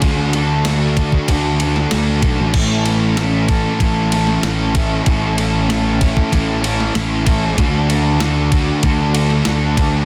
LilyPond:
<<
  \new Staff \with { instrumentName = "Overdriven electric guitar" } { \time 4/4 \key a \major \tempo 4 = 95 <d a d' fis' a'>8 <d' fis' a'>8 <a d' fis' a'>8 <d' fis' a'>8 <d a d' fis' a'>8 <d' fis' a'>8 <a d' fis' a'>8 <d' fis' a'>8 | <a, e a cis' e' a'>8 <a cis' e' a'>8 <a cis' e' a'>8 <a cis' e' a'>8 <a, e a cis' e' a'>8 <a cis' e' a'>8 <a cis' e' a'>8 <a cis' e' a'>8 | <a, e a cis' e' a'>8 <a cis' e' a'>8 <a cis' e' a'>8 <a cis' e' a'>8 <a, e a cis' e' a'>8 <a cis' e' a'>8 <a cis' e' a'>8 <a cis' e' a'>8 | <d a d' fis' a'>8 <d' fis' a'>8 <a d' fis' a'>8 <d' fis' a'>8 <d a d' fis' a'>8 <d' fis' a'>8 <a d' fis' a'>8 <d' fis' a'>8 | }
  \new Staff \with { instrumentName = "Picked electric bass" } { \clef bass \time 4/4 \key a \major d,2 d,4 d,8 b,,16 a,,16 | a,,2 a,,4 a,,4 | a,,2 a,,4 a,,4 | d,2 d,4 d,4 | }
  \new DrumStaff \with { instrumentName = "Drums" } \drummode { \time 4/4 <bd cymr>8 cymr8 <cymr sn>8 <bd cymr>16 bd16 <bd cymr>8 cymr16 sn16 <cymr sn>8 <bd cymr>8 | <cymc bd>8 cymr8 <cymr sn>8 <bd cymr>8 <bd cymr>8 cymr16 sn16 <cymr sn>8 <bd cymr>8 | <bd cymr>8 cymr8 <cymr sn>8 <bd cymr>16 bd16 <bd cymr>8 cymr16 sn16 <cymr sn>8 <bd cymr>8 | <bd cymr>8 cymr8 <cymr sn>8 <bd cymr>8 <bd cymr>8 cymr16 sn16 <cymr sn>8 <bd cymr>8 | }
>>